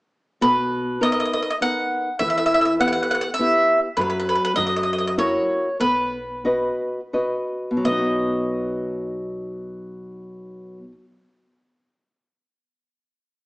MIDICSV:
0, 0, Header, 1, 4, 480
1, 0, Start_track
1, 0, Key_signature, 5, "major"
1, 0, Tempo, 596421
1, 327, Time_signature, 3, 2, 24, 8
1, 3680, Tempo, 624350
1, 5120, Tempo, 678733
1, 5600, Tempo, 706714
1, 9901, End_track
2, 0, Start_track
2, 0, Title_t, "Mandolin"
2, 0, Program_c, 0, 25
2, 340, Note_on_c, 0, 71, 74
2, 825, Note_off_c, 0, 71, 0
2, 828, Note_on_c, 0, 75, 82
2, 883, Note_off_c, 0, 75, 0
2, 902, Note_on_c, 0, 75, 70
2, 953, Note_off_c, 0, 75, 0
2, 965, Note_on_c, 0, 75, 62
2, 1000, Note_off_c, 0, 75, 0
2, 1010, Note_on_c, 0, 75, 50
2, 1065, Note_off_c, 0, 75, 0
2, 1074, Note_on_c, 0, 75, 61
2, 1127, Note_off_c, 0, 75, 0
2, 1147, Note_on_c, 0, 75, 51
2, 1192, Note_off_c, 0, 75, 0
2, 1211, Note_on_c, 0, 75, 66
2, 1252, Note_off_c, 0, 75, 0
2, 1305, Note_on_c, 0, 78, 85
2, 1762, Note_off_c, 0, 78, 0
2, 1765, Note_on_c, 0, 76, 82
2, 1835, Note_off_c, 0, 76, 0
2, 1849, Note_on_c, 0, 76, 62
2, 1903, Note_off_c, 0, 76, 0
2, 1912, Note_on_c, 0, 76, 62
2, 1969, Note_off_c, 0, 76, 0
2, 1979, Note_on_c, 0, 76, 64
2, 2037, Note_off_c, 0, 76, 0
2, 2046, Note_on_c, 0, 76, 60
2, 2093, Note_off_c, 0, 76, 0
2, 2102, Note_on_c, 0, 76, 62
2, 2125, Note_off_c, 0, 76, 0
2, 2135, Note_on_c, 0, 76, 67
2, 2195, Note_off_c, 0, 76, 0
2, 2258, Note_on_c, 0, 78, 87
2, 2306, Note_off_c, 0, 78, 0
2, 2316, Note_on_c, 0, 78, 69
2, 2345, Note_off_c, 0, 78, 0
2, 2355, Note_on_c, 0, 78, 77
2, 2426, Note_off_c, 0, 78, 0
2, 2436, Note_on_c, 0, 78, 60
2, 2492, Note_off_c, 0, 78, 0
2, 2502, Note_on_c, 0, 78, 67
2, 2523, Note_off_c, 0, 78, 0
2, 2533, Note_on_c, 0, 78, 57
2, 2575, Note_off_c, 0, 78, 0
2, 2585, Note_on_c, 0, 78, 76
2, 2653, Note_off_c, 0, 78, 0
2, 2687, Note_on_c, 0, 76, 91
2, 3048, Note_off_c, 0, 76, 0
2, 3193, Note_on_c, 0, 71, 78
2, 3221, Note_off_c, 0, 71, 0
2, 3230, Note_on_c, 0, 71, 55
2, 3288, Note_off_c, 0, 71, 0
2, 3297, Note_on_c, 0, 71, 66
2, 3367, Note_off_c, 0, 71, 0
2, 3377, Note_on_c, 0, 71, 56
2, 3443, Note_off_c, 0, 71, 0
2, 3452, Note_on_c, 0, 71, 61
2, 3494, Note_off_c, 0, 71, 0
2, 3504, Note_on_c, 0, 71, 54
2, 3569, Note_off_c, 0, 71, 0
2, 3578, Note_on_c, 0, 71, 69
2, 3634, Note_off_c, 0, 71, 0
2, 3668, Note_on_c, 0, 75, 82
2, 3733, Note_off_c, 0, 75, 0
2, 3752, Note_on_c, 0, 75, 59
2, 3807, Note_off_c, 0, 75, 0
2, 3827, Note_on_c, 0, 75, 61
2, 3871, Note_off_c, 0, 75, 0
2, 3880, Note_on_c, 0, 75, 58
2, 3935, Note_off_c, 0, 75, 0
2, 3955, Note_on_c, 0, 75, 57
2, 3987, Note_off_c, 0, 75, 0
2, 3997, Note_on_c, 0, 75, 48
2, 4043, Note_off_c, 0, 75, 0
2, 4066, Note_on_c, 0, 75, 62
2, 4105, Note_off_c, 0, 75, 0
2, 4152, Note_on_c, 0, 73, 77
2, 4597, Note_off_c, 0, 73, 0
2, 4628, Note_on_c, 0, 71, 72
2, 5834, Note_off_c, 0, 71, 0
2, 6093, Note_on_c, 0, 75, 71
2, 8177, Note_off_c, 0, 75, 0
2, 9901, End_track
3, 0, Start_track
3, 0, Title_t, "Nylon-string guitar"
3, 0, Program_c, 1, 24
3, 332, Note_on_c, 1, 47, 61
3, 802, Note_off_c, 1, 47, 0
3, 811, Note_on_c, 1, 63, 43
3, 813, Note_on_c, 1, 59, 49
3, 815, Note_on_c, 1, 70, 53
3, 1196, Note_off_c, 1, 59, 0
3, 1198, Note_off_c, 1, 63, 0
3, 1200, Note_off_c, 1, 70, 0
3, 1293, Note_on_c, 1, 63, 29
3, 1297, Note_on_c, 1, 59, 35
3, 1305, Note_on_c, 1, 70, 36
3, 1675, Note_off_c, 1, 63, 0
3, 1678, Note_off_c, 1, 59, 0
3, 1682, Note_off_c, 1, 70, 0
3, 1777, Note_on_c, 1, 52, 52
3, 2236, Note_off_c, 1, 52, 0
3, 2250, Note_on_c, 1, 59, 47
3, 2252, Note_on_c, 1, 64, 42
3, 2262, Note_on_c, 1, 67, 51
3, 2632, Note_off_c, 1, 64, 0
3, 2633, Note_off_c, 1, 59, 0
3, 2639, Note_off_c, 1, 67, 0
3, 2729, Note_on_c, 1, 59, 40
3, 2733, Note_on_c, 1, 64, 31
3, 2740, Note_on_c, 1, 67, 49
3, 3110, Note_off_c, 1, 59, 0
3, 3113, Note_off_c, 1, 64, 0
3, 3116, Note_off_c, 1, 67, 0
3, 3212, Note_on_c, 1, 54, 62
3, 3666, Note_off_c, 1, 54, 0
3, 3675, Note_on_c, 1, 54, 64
3, 4130, Note_off_c, 1, 54, 0
3, 4144, Note_on_c, 1, 64, 43
3, 4147, Note_on_c, 1, 66, 41
3, 4150, Note_on_c, 1, 70, 39
3, 4528, Note_off_c, 1, 64, 0
3, 4530, Note_off_c, 1, 66, 0
3, 4530, Note_off_c, 1, 70, 0
3, 4621, Note_on_c, 1, 59, 54
3, 5105, Note_off_c, 1, 59, 0
3, 5121, Note_on_c, 1, 66, 52
3, 5126, Note_on_c, 1, 75, 50
3, 5133, Note_on_c, 1, 71, 44
3, 5506, Note_off_c, 1, 66, 0
3, 5509, Note_off_c, 1, 75, 0
3, 5513, Note_off_c, 1, 71, 0
3, 5605, Note_on_c, 1, 66, 37
3, 5610, Note_on_c, 1, 71, 40
3, 5610, Note_on_c, 1, 75, 36
3, 5990, Note_off_c, 1, 66, 0
3, 5990, Note_off_c, 1, 75, 0
3, 5991, Note_off_c, 1, 71, 0
3, 5996, Note_on_c, 1, 47, 46
3, 6038, Note_on_c, 1, 54, 41
3, 6088, Note_on_c, 1, 59, 39
3, 6133, Note_on_c, 1, 63, 39
3, 6179, Note_on_c, 1, 66, 56
3, 8080, Note_off_c, 1, 47, 0
3, 8122, Note_off_c, 1, 54, 0
3, 8171, Note_off_c, 1, 59, 0
3, 8217, Note_off_c, 1, 63, 0
3, 8263, Note_off_c, 1, 66, 0
3, 9901, End_track
4, 0, Start_track
4, 0, Title_t, "Upright bass"
4, 0, Program_c, 2, 32
4, 335, Note_on_c, 2, 35, 58
4, 962, Note_off_c, 2, 35, 0
4, 1774, Note_on_c, 2, 40, 79
4, 2394, Note_off_c, 2, 40, 0
4, 3198, Note_on_c, 2, 42, 87
4, 3511, Note_off_c, 2, 42, 0
4, 3686, Note_on_c, 2, 42, 93
4, 4298, Note_off_c, 2, 42, 0
4, 4631, Note_on_c, 2, 35, 77
4, 5278, Note_off_c, 2, 35, 0
4, 6091, Note_on_c, 2, 35, 68
4, 8175, Note_off_c, 2, 35, 0
4, 9901, End_track
0, 0, End_of_file